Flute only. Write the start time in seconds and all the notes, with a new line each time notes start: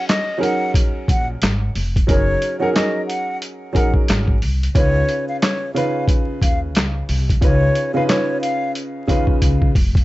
0.09 D#5
0.42 F#5
1.10 F#5
2.10 C#5
2.60 F#5
2.74 D#5
3.07 F#5
3.74 F#5
4.75 C#5
5.29 F5
5.41 C#5
5.74 F5
6.42 F5
7.42 C#5
7.94 F5
8.08 C#5
8.41 F5
9.08 F5